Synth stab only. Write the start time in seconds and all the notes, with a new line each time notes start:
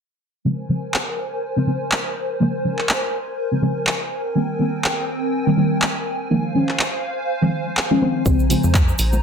0.45 C#3 F3 G#3 C4
0.69 C#3 F3 G#3 C4
1.56 C#3 F3 G#3 C4
1.66 C#3 F3 G#3 C4
2.40 C#3 F3 G#3 A#3
2.64 C#3 F3 G#3 C#4
3.51 C#3 F3 G#3 C4
3.62 C#3 F3 G#3 C4
4.35 D#3 G3 A#3 C4
4.59 D#3 G3 A#3 C4
5.46 D#3 G3 A#3 C4
5.56 D#3 G3 A#3 C4
6.30 D#3 F3 G#3 A#3
6.55 D#3 F3 G#3 C#4
7.42 D#3 F3 G#3 C4
7.90 D#3 F3 G#3 C#4
8.01 D#3 F3 G#3 C4
8.25 C#3 F3 G#3 C4
8.49 C#3 F3 G#3 C4